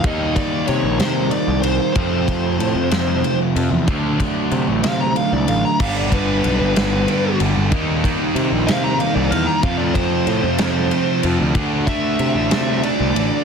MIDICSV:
0, 0, Header, 1, 6, 480
1, 0, Start_track
1, 0, Tempo, 640342
1, 28, Time_signature, 6, 3, 24, 8
1, 10075, End_track
2, 0, Start_track
2, 0, Title_t, "Lead electric guitar"
2, 0, Program_c, 0, 29
2, 43, Note_on_c, 0, 75, 86
2, 268, Note_off_c, 0, 75, 0
2, 273, Note_on_c, 0, 74, 84
2, 501, Note_off_c, 0, 74, 0
2, 504, Note_on_c, 0, 73, 92
2, 738, Note_off_c, 0, 73, 0
2, 745, Note_on_c, 0, 72, 91
2, 979, Note_off_c, 0, 72, 0
2, 987, Note_on_c, 0, 74, 86
2, 1208, Note_off_c, 0, 74, 0
2, 1211, Note_on_c, 0, 72, 81
2, 1441, Note_off_c, 0, 72, 0
2, 1450, Note_on_c, 0, 72, 98
2, 2532, Note_off_c, 0, 72, 0
2, 3626, Note_on_c, 0, 77, 112
2, 3742, Note_off_c, 0, 77, 0
2, 3750, Note_on_c, 0, 82, 88
2, 3864, Note_off_c, 0, 82, 0
2, 3870, Note_on_c, 0, 77, 80
2, 3984, Note_off_c, 0, 77, 0
2, 3994, Note_on_c, 0, 74, 78
2, 4106, Note_off_c, 0, 74, 0
2, 4110, Note_on_c, 0, 77, 92
2, 4224, Note_off_c, 0, 77, 0
2, 4235, Note_on_c, 0, 82, 85
2, 4346, Note_off_c, 0, 82, 0
2, 4352, Note_on_c, 0, 77, 84
2, 4465, Note_off_c, 0, 77, 0
2, 4470, Note_on_c, 0, 74, 84
2, 4584, Note_off_c, 0, 74, 0
2, 4598, Note_on_c, 0, 71, 91
2, 5521, Note_off_c, 0, 71, 0
2, 6502, Note_on_c, 0, 77, 109
2, 6619, Note_off_c, 0, 77, 0
2, 6622, Note_on_c, 0, 82, 87
2, 6734, Note_on_c, 0, 77, 90
2, 6739, Note_off_c, 0, 82, 0
2, 6853, Note_off_c, 0, 77, 0
2, 6853, Note_on_c, 0, 74, 84
2, 6976, Note_off_c, 0, 74, 0
2, 6976, Note_on_c, 0, 77, 89
2, 7096, Note_off_c, 0, 77, 0
2, 7097, Note_on_c, 0, 82, 85
2, 7216, Note_off_c, 0, 82, 0
2, 7219, Note_on_c, 0, 77, 87
2, 7327, Note_off_c, 0, 77, 0
2, 7327, Note_on_c, 0, 74, 101
2, 7449, Note_on_c, 0, 72, 106
2, 7451, Note_off_c, 0, 74, 0
2, 8387, Note_off_c, 0, 72, 0
2, 8898, Note_on_c, 0, 76, 98
2, 9601, Note_off_c, 0, 76, 0
2, 9625, Note_on_c, 0, 74, 98
2, 10075, Note_off_c, 0, 74, 0
2, 10075, End_track
3, 0, Start_track
3, 0, Title_t, "Overdriven electric guitar"
3, 0, Program_c, 1, 29
3, 38, Note_on_c, 1, 51, 92
3, 42, Note_on_c, 1, 55, 95
3, 45, Note_on_c, 1, 58, 99
3, 51, Note_on_c, 1, 63, 104
3, 1458, Note_off_c, 1, 51, 0
3, 1460, Note_off_c, 1, 55, 0
3, 1461, Note_off_c, 1, 58, 0
3, 1464, Note_off_c, 1, 63, 0
3, 1473, Note_on_c, 1, 41, 89
3, 1483, Note_on_c, 1, 48, 89
3, 1487, Note_on_c, 1, 53, 104
3, 1491, Note_on_c, 1, 57, 98
3, 1495, Note_on_c, 1, 60, 94
3, 2895, Note_off_c, 1, 41, 0
3, 2898, Note_off_c, 1, 48, 0
3, 2901, Note_on_c, 1, 50, 88
3, 2902, Note_off_c, 1, 53, 0
3, 2903, Note_off_c, 1, 57, 0
3, 2906, Note_off_c, 1, 60, 0
3, 2909, Note_on_c, 1, 54, 97
3, 2915, Note_on_c, 1, 57, 86
3, 2919, Note_on_c, 1, 62, 106
3, 4328, Note_off_c, 1, 50, 0
3, 4332, Note_off_c, 1, 54, 0
3, 4335, Note_off_c, 1, 57, 0
3, 4337, Note_off_c, 1, 62, 0
3, 4342, Note_on_c, 1, 43, 82
3, 4348, Note_on_c, 1, 50, 83
3, 4351, Note_on_c, 1, 55, 90
3, 4357, Note_on_c, 1, 59, 90
3, 4361, Note_on_c, 1, 62, 96
3, 5768, Note_off_c, 1, 43, 0
3, 5771, Note_off_c, 1, 50, 0
3, 5772, Note_off_c, 1, 55, 0
3, 5775, Note_off_c, 1, 59, 0
3, 5777, Note_off_c, 1, 62, 0
3, 5785, Note_on_c, 1, 51, 84
3, 5788, Note_on_c, 1, 55, 91
3, 5793, Note_on_c, 1, 58, 94
3, 5798, Note_on_c, 1, 63, 98
3, 7209, Note_off_c, 1, 51, 0
3, 7211, Note_off_c, 1, 55, 0
3, 7213, Note_off_c, 1, 58, 0
3, 7215, Note_off_c, 1, 63, 0
3, 7216, Note_on_c, 1, 53, 89
3, 7224, Note_on_c, 1, 57, 93
3, 7227, Note_on_c, 1, 60, 94
3, 7230, Note_on_c, 1, 65, 92
3, 8646, Note_off_c, 1, 53, 0
3, 8650, Note_off_c, 1, 57, 0
3, 8651, Note_off_c, 1, 60, 0
3, 8653, Note_off_c, 1, 65, 0
3, 8658, Note_on_c, 1, 50, 86
3, 8665, Note_on_c, 1, 57, 88
3, 8668, Note_on_c, 1, 62, 97
3, 8671, Note_on_c, 1, 66, 96
3, 10075, Note_off_c, 1, 50, 0
3, 10075, Note_off_c, 1, 57, 0
3, 10075, Note_off_c, 1, 62, 0
3, 10075, Note_off_c, 1, 66, 0
3, 10075, End_track
4, 0, Start_track
4, 0, Title_t, "Distorted electric guitar"
4, 0, Program_c, 2, 30
4, 4347, Note_on_c, 2, 43, 86
4, 4350, Note_on_c, 2, 50, 99
4, 4353, Note_on_c, 2, 55, 99
4, 4571, Note_off_c, 2, 43, 0
4, 4577, Note_off_c, 2, 50, 0
4, 4580, Note_on_c, 2, 43, 80
4, 4585, Note_off_c, 2, 55, 0
4, 4586, Note_on_c, 2, 50, 86
4, 4588, Note_on_c, 2, 55, 85
4, 5062, Note_off_c, 2, 50, 0
4, 5064, Note_off_c, 2, 43, 0
4, 5069, Note_off_c, 2, 55, 0
4, 5071, Note_on_c, 2, 50, 96
4, 5073, Note_on_c, 2, 43, 84
4, 5078, Note_on_c, 2, 55, 99
4, 5293, Note_off_c, 2, 43, 0
4, 5299, Note_off_c, 2, 50, 0
4, 5302, Note_off_c, 2, 55, 0
4, 5302, Note_on_c, 2, 43, 82
4, 5308, Note_on_c, 2, 50, 97
4, 5311, Note_on_c, 2, 55, 95
4, 5538, Note_off_c, 2, 43, 0
4, 5542, Note_off_c, 2, 50, 0
4, 5544, Note_off_c, 2, 55, 0
4, 5547, Note_on_c, 2, 43, 81
4, 5551, Note_on_c, 2, 50, 90
4, 5553, Note_on_c, 2, 55, 87
4, 5771, Note_off_c, 2, 43, 0
4, 5773, Note_off_c, 2, 50, 0
4, 5773, Note_off_c, 2, 55, 0
4, 5786, Note_on_c, 2, 51, 94
4, 5788, Note_on_c, 2, 58, 106
4, 5790, Note_on_c, 2, 63, 101
4, 6014, Note_off_c, 2, 51, 0
4, 6019, Note_off_c, 2, 58, 0
4, 6019, Note_off_c, 2, 63, 0
4, 6023, Note_on_c, 2, 51, 80
4, 6028, Note_on_c, 2, 58, 84
4, 6028, Note_on_c, 2, 63, 93
4, 6493, Note_off_c, 2, 51, 0
4, 6498, Note_off_c, 2, 58, 0
4, 6502, Note_on_c, 2, 51, 93
4, 6503, Note_off_c, 2, 63, 0
4, 6507, Note_on_c, 2, 58, 96
4, 6512, Note_on_c, 2, 63, 111
4, 6736, Note_off_c, 2, 51, 0
4, 6740, Note_off_c, 2, 58, 0
4, 6742, Note_off_c, 2, 63, 0
4, 6745, Note_on_c, 2, 51, 91
4, 6749, Note_on_c, 2, 58, 85
4, 6751, Note_on_c, 2, 63, 93
4, 6970, Note_off_c, 2, 51, 0
4, 6972, Note_off_c, 2, 58, 0
4, 6976, Note_off_c, 2, 63, 0
4, 6979, Note_on_c, 2, 51, 76
4, 6981, Note_on_c, 2, 58, 89
4, 6985, Note_on_c, 2, 63, 96
4, 7206, Note_off_c, 2, 51, 0
4, 7208, Note_off_c, 2, 58, 0
4, 7209, Note_off_c, 2, 63, 0
4, 7220, Note_on_c, 2, 41, 100
4, 7222, Note_on_c, 2, 48, 111
4, 7230, Note_on_c, 2, 53, 101
4, 7448, Note_off_c, 2, 41, 0
4, 7454, Note_off_c, 2, 48, 0
4, 7457, Note_on_c, 2, 41, 77
4, 7459, Note_off_c, 2, 53, 0
4, 7463, Note_on_c, 2, 48, 88
4, 7468, Note_on_c, 2, 53, 85
4, 7926, Note_off_c, 2, 41, 0
4, 7926, Note_off_c, 2, 48, 0
4, 7930, Note_off_c, 2, 53, 0
4, 7935, Note_on_c, 2, 41, 92
4, 7935, Note_on_c, 2, 48, 106
4, 7939, Note_on_c, 2, 53, 92
4, 8163, Note_off_c, 2, 41, 0
4, 8168, Note_off_c, 2, 48, 0
4, 8172, Note_off_c, 2, 53, 0
4, 8172, Note_on_c, 2, 41, 91
4, 8177, Note_on_c, 2, 48, 102
4, 8181, Note_on_c, 2, 53, 96
4, 8400, Note_off_c, 2, 41, 0
4, 8406, Note_off_c, 2, 48, 0
4, 8409, Note_on_c, 2, 41, 82
4, 8411, Note_off_c, 2, 53, 0
4, 8415, Note_on_c, 2, 48, 91
4, 8420, Note_on_c, 2, 53, 91
4, 8642, Note_off_c, 2, 41, 0
4, 8645, Note_off_c, 2, 48, 0
4, 8648, Note_off_c, 2, 53, 0
4, 8655, Note_on_c, 2, 50, 93
4, 8659, Note_on_c, 2, 57, 98
4, 8659, Note_on_c, 2, 62, 116
4, 8892, Note_off_c, 2, 50, 0
4, 8897, Note_off_c, 2, 57, 0
4, 8898, Note_off_c, 2, 62, 0
4, 8901, Note_on_c, 2, 50, 80
4, 8906, Note_on_c, 2, 57, 79
4, 8907, Note_on_c, 2, 62, 85
4, 9375, Note_off_c, 2, 50, 0
4, 9382, Note_off_c, 2, 57, 0
4, 9384, Note_on_c, 2, 50, 98
4, 9385, Note_off_c, 2, 62, 0
4, 9391, Note_on_c, 2, 57, 103
4, 9394, Note_on_c, 2, 62, 112
4, 9613, Note_off_c, 2, 50, 0
4, 9615, Note_off_c, 2, 57, 0
4, 9622, Note_on_c, 2, 50, 98
4, 9623, Note_off_c, 2, 62, 0
4, 9624, Note_on_c, 2, 57, 94
4, 9632, Note_on_c, 2, 62, 99
4, 9854, Note_off_c, 2, 50, 0
4, 9862, Note_off_c, 2, 57, 0
4, 9863, Note_on_c, 2, 50, 77
4, 9865, Note_off_c, 2, 62, 0
4, 9871, Note_on_c, 2, 57, 81
4, 9874, Note_on_c, 2, 62, 91
4, 10075, Note_off_c, 2, 50, 0
4, 10075, Note_off_c, 2, 57, 0
4, 10075, Note_off_c, 2, 62, 0
4, 10075, End_track
5, 0, Start_track
5, 0, Title_t, "Picked electric bass"
5, 0, Program_c, 3, 34
5, 29, Note_on_c, 3, 39, 99
5, 253, Note_off_c, 3, 39, 0
5, 514, Note_on_c, 3, 48, 93
5, 622, Note_off_c, 3, 48, 0
5, 626, Note_on_c, 3, 34, 87
5, 739, Note_off_c, 3, 34, 0
5, 744, Note_on_c, 3, 48, 101
5, 971, Note_off_c, 3, 48, 0
5, 1107, Note_on_c, 3, 36, 94
5, 1216, Note_off_c, 3, 36, 0
5, 1221, Note_on_c, 3, 36, 93
5, 1336, Note_off_c, 3, 36, 0
5, 1468, Note_on_c, 3, 41, 103
5, 1918, Note_off_c, 3, 41, 0
5, 1940, Note_on_c, 3, 45, 88
5, 2056, Note_off_c, 3, 45, 0
5, 2062, Note_on_c, 3, 41, 92
5, 2177, Note_off_c, 3, 41, 0
5, 2183, Note_on_c, 3, 41, 92
5, 2410, Note_off_c, 3, 41, 0
5, 2667, Note_on_c, 3, 41, 91
5, 2779, Note_off_c, 3, 41, 0
5, 2783, Note_on_c, 3, 40, 86
5, 2897, Note_off_c, 3, 40, 0
5, 2911, Note_on_c, 3, 38, 91
5, 3134, Note_off_c, 3, 38, 0
5, 3385, Note_on_c, 3, 48, 83
5, 3498, Note_off_c, 3, 48, 0
5, 3509, Note_on_c, 3, 33, 82
5, 3620, Note_off_c, 3, 33, 0
5, 3628, Note_on_c, 3, 48, 90
5, 3852, Note_off_c, 3, 48, 0
5, 3993, Note_on_c, 3, 36, 92
5, 4102, Note_off_c, 3, 36, 0
5, 4106, Note_on_c, 3, 33, 83
5, 4218, Note_off_c, 3, 33, 0
5, 4350, Note_on_c, 3, 31, 104
5, 4798, Note_off_c, 3, 31, 0
5, 4833, Note_on_c, 3, 35, 90
5, 4941, Note_off_c, 3, 35, 0
5, 4944, Note_on_c, 3, 31, 95
5, 5057, Note_off_c, 3, 31, 0
5, 5067, Note_on_c, 3, 31, 91
5, 5291, Note_off_c, 3, 31, 0
5, 5550, Note_on_c, 3, 31, 84
5, 5659, Note_off_c, 3, 31, 0
5, 5674, Note_on_c, 3, 31, 86
5, 5782, Note_off_c, 3, 31, 0
5, 5787, Note_on_c, 3, 39, 96
5, 6010, Note_off_c, 3, 39, 0
5, 6261, Note_on_c, 3, 48, 84
5, 6374, Note_off_c, 3, 48, 0
5, 6387, Note_on_c, 3, 34, 93
5, 6498, Note_off_c, 3, 34, 0
5, 6512, Note_on_c, 3, 48, 100
5, 6733, Note_off_c, 3, 48, 0
5, 6863, Note_on_c, 3, 36, 91
5, 6975, Note_off_c, 3, 36, 0
5, 6981, Note_on_c, 3, 40, 90
5, 7095, Note_off_c, 3, 40, 0
5, 7223, Note_on_c, 3, 41, 108
5, 7673, Note_off_c, 3, 41, 0
5, 7697, Note_on_c, 3, 45, 89
5, 7813, Note_off_c, 3, 45, 0
5, 7820, Note_on_c, 3, 41, 103
5, 7934, Note_off_c, 3, 41, 0
5, 7946, Note_on_c, 3, 41, 98
5, 8170, Note_off_c, 3, 41, 0
5, 8425, Note_on_c, 3, 41, 86
5, 8537, Note_off_c, 3, 41, 0
5, 8546, Note_on_c, 3, 38, 91
5, 8657, Note_off_c, 3, 38, 0
5, 8661, Note_on_c, 3, 38, 98
5, 8888, Note_off_c, 3, 38, 0
5, 9140, Note_on_c, 3, 48, 92
5, 9255, Note_off_c, 3, 48, 0
5, 9259, Note_on_c, 3, 33, 84
5, 9374, Note_off_c, 3, 33, 0
5, 9379, Note_on_c, 3, 48, 93
5, 9608, Note_off_c, 3, 48, 0
5, 9746, Note_on_c, 3, 36, 90
5, 9852, Note_off_c, 3, 36, 0
5, 9856, Note_on_c, 3, 33, 89
5, 9974, Note_off_c, 3, 33, 0
5, 10075, End_track
6, 0, Start_track
6, 0, Title_t, "Drums"
6, 29, Note_on_c, 9, 51, 99
6, 31, Note_on_c, 9, 36, 111
6, 104, Note_off_c, 9, 51, 0
6, 106, Note_off_c, 9, 36, 0
6, 270, Note_on_c, 9, 36, 75
6, 271, Note_on_c, 9, 51, 82
6, 345, Note_off_c, 9, 36, 0
6, 346, Note_off_c, 9, 51, 0
6, 506, Note_on_c, 9, 51, 81
6, 581, Note_off_c, 9, 51, 0
6, 747, Note_on_c, 9, 51, 96
6, 753, Note_on_c, 9, 38, 111
6, 822, Note_off_c, 9, 51, 0
6, 828, Note_off_c, 9, 38, 0
6, 983, Note_on_c, 9, 51, 74
6, 1058, Note_off_c, 9, 51, 0
6, 1225, Note_on_c, 9, 51, 75
6, 1300, Note_off_c, 9, 51, 0
6, 1465, Note_on_c, 9, 51, 98
6, 1467, Note_on_c, 9, 36, 110
6, 1540, Note_off_c, 9, 51, 0
6, 1542, Note_off_c, 9, 36, 0
6, 1708, Note_on_c, 9, 36, 74
6, 1711, Note_on_c, 9, 51, 71
6, 1783, Note_off_c, 9, 36, 0
6, 1786, Note_off_c, 9, 51, 0
6, 1950, Note_on_c, 9, 51, 77
6, 2025, Note_off_c, 9, 51, 0
6, 2184, Note_on_c, 9, 51, 93
6, 2190, Note_on_c, 9, 38, 109
6, 2259, Note_off_c, 9, 51, 0
6, 2265, Note_off_c, 9, 38, 0
6, 2430, Note_on_c, 9, 51, 69
6, 2505, Note_off_c, 9, 51, 0
6, 2671, Note_on_c, 9, 51, 71
6, 2746, Note_off_c, 9, 51, 0
6, 2907, Note_on_c, 9, 36, 114
6, 2907, Note_on_c, 9, 51, 92
6, 2982, Note_off_c, 9, 36, 0
6, 2982, Note_off_c, 9, 51, 0
6, 3146, Note_on_c, 9, 36, 79
6, 3149, Note_on_c, 9, 51, 72
6, 3221, Note_off_c, 9, 36, 0
6, 3224, Note_off_c, 9, 51, 0
6, 3384, Note_on_c, 9, 51, 72
6, 3459, Note_off_c, 9, 51, 0
6, 3625, Note_on_c, 9, 51, 100
6, 3631, Note_on_c, 9, 38, 108
6, 3700, Note_off_c, 9, 51, 0
6, 3706, Note_off_c, 9, 38, 0
6, 3867, Note_on_c, 9, 51, 72
6, 3942, Note_off_c, 9, 51, 0
6, 4107, Note_on_c, 9, 51, 76
6, 4182, Note_off_c, 9, 51, 0
6, 4347, Note_on_c, 9, 36, 111
6, 4348, Note_on_c, 9, 49, 100
6, 4422, Note_off_c, 9, 36, 0
6, 4423, Note_off_c, 9, 49, 0
6, 4586, Note_on_c, 9, 36, 81
6, 4589, Note_on_c, 9, 51, 79
6, 4661, Note_off_c, 9, 36, 0
6, 4664, Note_off_c, 9, 51, 0
6, 4828, Note_on_c, 9, 51, 76
6, 4903, Note_off_c, 9, 51, 0
6, 5070, Note_on_c, 9, 51, 99
6, 5076, Note_on_c, 9, 38, 111
6, 5145, Note_off_c, 9, 51, 0
6, 5150, Note_off_c, 9, 38, 0
6, 5307, Note_on_c, 9, 51, 81
6, 5382, Note_off_c, 9, 51, 0
6, 5547, Note_on_c, 9, 51, 80
6, 5622, Note_off_c, 9, 51, 0
6, 5784, Note_on_c, 9, 51, 109
6, 5786, Note_on_c, 9, 36, 109
6, 5859, Note_off_c, 9, 51, 0
6, 5861, Note_off_c, 9, 36, 0
6, 6027, Note_on_c, 9, 36, 77
6, 6033, Note_on_c, 9, 51, 74
6, 6102, Note_off_c, 9, 36, 0
6, 6108, Note_off_c, 9, 51, 0
6, 6267, Note_on_c, 9, 51, 81
6, 6342, Note_off_c, 9, 51, 0
6, 6509, Note_on_c, 9, 51, 93
6, 6515, Note_on_c, 9, 38, 105
6, 6584, Note_off_c, 9, 51, 0
6, 6590, Note_off_c, 9, 38, 0
6, 6745, Note_on_c, 9, 51, 75
6, 6820, Note_off_c, 9, 51, 0
6, 6986, Note_on_c, 9, 51, 71
6, 7061, Note_off_c, 9, 51, 0
6, 7220, Note_on_c, 9, 36, 117
6, 7220, Note_on_c, 9, 51, 94
6, 7295, Note_off_c, 9, 36, 0
6, 7295, Note_off_c, 9, 51, 0
6, 7459, Note_on_c, 9, 36, 77
6, 7462, Note_on_c, 9, 51, 70
6, 7534, Note_off_c, 9, 36, 0
6, 7537, Note_off_c, 9, 51, 0
6, 7697, Note_on_c, 9, 51, 74
6, 7772, Note_off_c, 9, 51, 0
6, 7934, Note_on_c, 9, 51, 105
6, 7940, Note_on_c, 9, 38, 108
6, 8009, Note_off_c, 9, 51, 0
6, 8015, Note_off_c, 9, 38, 0
6, 8179, Note_on_c, 9, 51, 76
6, 8254, Note_off_c, 9, 51, 0
6, 8420, Note_on_c, 9, 51, 74
6, 8495, Note_off_c, 9, 51, 0
6, 8658, Note_on_c, 9, 36, 110
6, 8658, Note_on_c, 9, 51, 103
6, 8733, Note_off_c, 9, 36, 0
6, 8733, Note_off_c, 9, 51, 0
6, 8898, Note_on_c, 9, 36, 80
6, 8901, Note_on_c, 9, 51, 76
6, 8973, Note_off_c, 9, 36, 0
6, 8976, Note_off_c, 9, 51, 0
6, 9139, Note_on_c, 9, 51, 82
6, 9214, Note_off_c, 9, 51, 0
6, 9379, Note_on_c, 9, 51, 99
6, 9385, Note_on_c, 9, 38, 112
6, 9453, Note_off_c, 9, 51, 0
6, 9459, Note_off_c, 9, 38, 0
6, 9620, Note_on_c, 9, 51, 79
6, 9695, Note_off_c, 9, 51, 0
6, 9866, Note_on_c, 9, 51, 74
6, 9941, Note_off_c, 9, 51, 0
6, 10075, End_track
0, 0, End_of_file